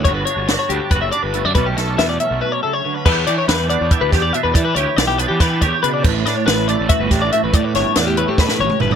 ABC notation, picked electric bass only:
X:1
M:7/8
L:1/16
Q:1/4=141
K:Edor
V:1 name="Picked electric bass" clef=bass
G,,,2 z G,,,2 z D,, z F,,,2 z G,,,2 F,, | B,,,2 B,,,2 E,,2 z B,,, z6 | E,,2 E, z E,,3 E,, z D,, E,,2 z E,, | E,2 D,, z B,,,3 E,3 E,, z C,2 |
A,,,2 A,, z A,,,3 A,,, z G,,, A,,,2 z A,,, | A,,2 G,,, z E,,3 A,,3 A,,, z G,,,2 |]